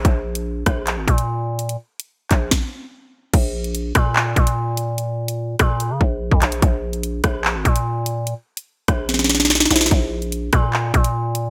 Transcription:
<<
  \new Staff \with { instrumentName = "808-style bass" } { \clef bass \time 4/4 \key aes \mixolydian \tempo 4 = 146 bes,,4. bes,,8. aes,,16 bes,4.~ | bes,16 r4 r16 bes,,8 r2 | bes,,4. bes,4 bes,4.~ | bes,4. bes,8. des16 bes,,8. f,16 bes,,8 |
bes,,4. bes,,8. aes,,16 bes,4.~ | bes,16 r4 r16 bes,,2 bes,,8 | bes,,4. bes,4 bes,4. | }
  \new DrumStaff \with { instrumentName = "Drums" } \drummode { \time 4/4 <hh bd>8. hh16 r8 <hh bd ss>8 <hc hh>8 <hh bd>16 hh16 r8. hh16 | hh8. hh16 r8 <hc hh bd>8 <bd sn>4 r4 | <cymc hh bd>8. hh16 hh8 <hh bd ss>8 hc8 <hh bd>16 hh16 r8 hh8 | hh8. hh16 r8 <hh bd ss>8 hh8 bd8 r16 bd16 <hc hh>16 hh16 |
<hh bd>8. hh16 hh8 <hh bd ss>8 hc8 <hh bd>16 hh16 r8 hh8 | hh8. hh16 r8 <hh bd ss>8 <hh sn>32 sn32 sn32 sn32 sn32 sn32 sn32 sn32 sn32 sn32 sn32 sn32 <hh sn>32 sn32 <hh sn>32 sn32 | <hh bd>8. hh16 hh8 <hh bd ss>8 hc8 <hh bd>16 hh16 r8 hh8 | }
>>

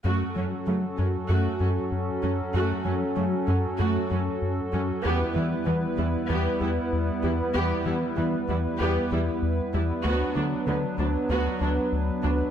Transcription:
<<
  \new Staff \with { instrumentName = "Analog synth pad" } { \time 4/4 \key fis \phrygian \tempo 4 = 96 <fis cis' fis' a'>1~ | <fis cis' fis' a'>1 | <g b e' b'>1~ | <g b e' b'>1 |
<fis b d' b'>1 | }
  \new Staff \with { instrumentName = "Viola section" } { \time 4/4 \key fis \phrygian <a fis'>8 <fis cis'>8 <cis a>8 <fis cis'>8 <a fis'>8 <fis cis'>8 r8 <fis cis'>8 | <a fis'>8 <fis cis'>8 <cis a>8 <fis cis'>8 <a fis'>8 <fis cis'>8 r8 <fis cis'>8 | <b g'>8 <g e'>8 <e b>8 <g e'>8 <b g'>8 <g e'>8 r8 <g e'>8 | <b g'>8 <g e'>8 <e b>8 <g e'>8 <b g'>8 <g e'>8 r8 <g e'>8 |
<b fis'>8 <fis d'>8 <d b>8 <fis d'>8 <b fis'>8 <fis d'>8 r8 <fis d'>8 | }
  \new Staff \with { instrumentName = "Analog synth bass" } { \clef bass \time 4/4 \key fis \phrygian fis,8 fis8 fis8 fis,8 fis,8 fis,8 fis,8 fis,8 | fis,8 fis8 fis8 fis,8 fis,8 fis,8 fis,8 fis,8 | e,8 e8 e8 e,8 e,8 e,8 e,8 e,8 | e,8 e8 e8 e,8 e,8 e,8 e,8 e,8 |
d,8 d8 d8 d,8 d,8 d,8 d,8 d,8 | }
  \new Staff \with { instrumentName = "Cello section" } { \clef bass \time 4/4 \key fis \phrygian fis,8 fis,8 fis,8 fis,8 fis,8 fis,8 r8 fis,8 | fis,8 fis,8 fis,8 fis,8 fis,8 fis,8 r8 fis,8 | e,8 e,8 e,8 e,8 e,8 e,8 r8 e,8 | e,8 e,8 e,8 e,8 e,8 e,8 r8 e,8 |
d,8 d,8 d,8 d,8 d,8 d,8 r8 d,8 | }
>>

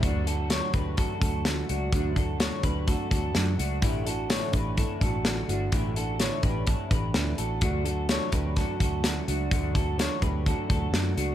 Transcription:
<<
  \new Staff \with { instrumentName = "Clean electric guitar" } { \time 4/4 \key d \major \tempo 4 = 127 <d' fis'>8 <fis' a'>8 <a' cis''>8 <g' b'>8 <fis' a'>8 <fis' a'>4 <d' fis'>8 | <d' fis'>8 <fis' a'>8 <a' cis''>8 <g' b'>8 <fis' a'>8 <fis' a'>4 <d' fis'>8 | <e' g'>8 <fis' a'>8 <a' cis''>8 <g' b'>8 <e' a'>8 <fis' a'>4 <d' fis'>8 | <e' g'>8 <fis' a'>8 <a' cis''>8 <g' b'>8 <e' a'>8 <g' b'>4 <fis' a'>8 |
<d' fis'>8 <fis' a'>8 <a' cis''>8 <g' b'>8 <fis' a'>8 <fis' a'>4 <d' fis'>8 | <d' fis'>8 <fis' a'>8 <a' cis''>8 <g' b'>8 <fis' a'>8 <fis' a'>4 <d' fis'>8 | }
  \new Staff \with { instrumentName = "Steel-string acoustic guitar" } { \time 4/4 \key d \major <d fis a d'>8 <fis a d'>8 <d fis a d'>8 <fis a d'>8 <d fis a d'>8 <fis a d'>8 <d fis a d'>8 <fis a d'>8 | <d fis a d'>8 <fis a d'>8 <d fis a d'>8 <fis a d'>8 <d fis a d'>8 <fis a d'>8 <d fis a d'>8 <fis a>8 | <a, d e a d'>8 <e a d'>8 <a, d e a d'>8 <e a d'>8 <d e a d'>8 <e a d'>8 <a, d e a d'>8 <e a d'>8 | <a, d e a d'>8 <e a d'>8 <a, d e a d'>8 <e a d'>8 <d e a d'>8 <e a d'>8 <a, d e a d'>8 <e a d'>8 |
<d fis a d'>8 <fis a d'>8 <d fis a d'>8 <fis a d'>8 <d fis a d'>8 <fis a d'>8 <d fis a d'>8 <fis a d'>8 | <d fis a d'>8 <fis a d'>8 <d fis a d'>8 <fis a d'>8 <d fis a d'>8 <fis a d'>8 <d fis a d'>8 <fis a d'>8 | }
  \new Staff \with { instrumentName = "Fingered electric bass" } { \clef bass \time 4/4 \key d \major d,4~ d,16 r16 d,8. r16 d,4 cis,8 | d,4~ d,16 r16 d,8. r16 d,8 fis,8 cis,8 | a,,4~ a,,16 r16 a,,8. r16 a,,4 g,,8 | a,,4~ a,,16 r16 a,,8. r16 a,,8 d,8 a,,8 |
d,4~ d,16 r16 d,8. r16 d,4 cis,8 | d,4~ d,16 r16 d,8. r16 d,8 fis,8 cis,8 | }
  \new DrumStaff \with { instrumentName = "Drums" } \drummode { \time 4/4 <hh bd>8 hh8 <hh sn>8 <hh bd>8 <hh bd>8 <hh bd>8 <hh sn>8 hh8 | <hh bd>8 <hh bd>8 <hh sn>8 <hh bd>8 <hh bd>8 <hh bd>8 <hh sn>8 hh8 | <hh bd>8 hh8 <hh sn>8 <hh bd>8 <hh bd>8 <hh bd>8 <hh sn>8 hh8 | <hh bd>8 hh8 <hh sn>8 <hh bd>8 <hh bd>8 <hh bd>8 <hh sn>8 hh8 |
<hh bd>8 hh8 <hh sn>8 <hh bd>8 <hh bd sn>8 <hh bd>8 <hh sn>8 hh8 | <hh bd>8 <hh bd>8 <hh sn>8 <hh bd>8 <hh bd>8 <hh bd>8 <hh sn>8 hh8 | }
>>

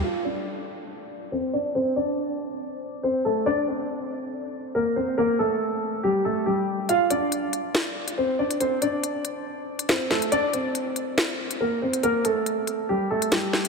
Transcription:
<<
  \new Staff \with { instrumentName = "Grand piano" } { \time 4/4 \key d \minor \tempo 4 = 140 <f' f''>8 <d' d''>2~ <d' d''>8 <c' c''>8 <d' d''>8 | <c' c''>8 <d' d''>2~ <d' d''>8 <c' c''>8 <a a'>8 | <d' d''>8 <c' c''>2~ <c' c''>8 <bes bes'>8 <c' c''>8 | <bes bes'>8 <a a'>4. <g g'>8 <a a'>8 <g g'>4 |
<f' f''>8 <d' d''>2~ <d' d''>8 <c' c''>8 <d' d''>8 | <c' c''>8 <d' d''>2~ <d' d''>8 <c' c''>8 <a a'>8 | <d' d''>8 <c' c''>2~ <c' c''>8 <bes bes'>8 <c' c''>8 | <bes bes'>8 <a a'>4. <g g'>8 <a a'>8 <g g'>4 | }
  \new DrumStaff \with { instrumentName = "Drums" } \drummode { \time 4/4 r4 r4 r4 r4 | r4 r4 r4 r4 | r4 r4 r4 r4 | r4 r4 r4 r4 |
hh8 hh8 hh8 hh8 sn8. hh16 r8. hh16 | hh8 hh8 hh8 hh8 r8. hh16 <hh sn>8 sn16 hh16 | hh8 hh8 hh8 hh8 sn8. hh16 r8. hh16 | hh8 hh8 hh8 hh8 r8. hh16 <hh sn>8 sn16 hh16 | }
>>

